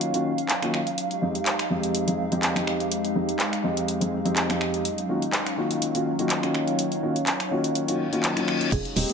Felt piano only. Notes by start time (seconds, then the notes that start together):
Already playing: D#3 A#3 C#4 F4 F#4
0.14 D#3 A#3 C#4 F4 F#4
0.62 D#3 A#3 C#4 F4 F#4
1.22 F2 G#3 C4 D#4 G4
1.70 F2 G#3 C4 D#4 G4
2.07 F2 G#3 C4 D#4 G#4
2.31 F2 G#3 C4 D#4 G4
2.55 F2 G#3 C4 D#4 G4
3.15 F2 G#3 C4 D#4 G4
3.64 F2 G#3 C4 D#4 G4
4.01 F2 G#3 C4 D#4 G#4
4.25 F2 G#3 C4 D#4 G4
4.49 F2 G#3 C4 D#4 G4
5.09 D#3 A#3 C#4 F4 F#4
5.57 D#3 A#3 C#4 F4 F#4
5.94 D#3 A#3 C#4 F4 F#4
6.19 D#3 A#3 C#4 F4 F#4
6.42 D#3 A#3 C#4 F4 F#4
7.02 D#3 A#3 C#4 F4 F#4
7.51 D#3 A#3 C#4 F4 F#4
7.88 D#3 A#3 C#4 F4 F#4
8.12 D#3 A#3 C#4 F4 F#4
8.36 D#3 A#3 C#4 F4 F#4
8.96 G#3 C4 D#4 G4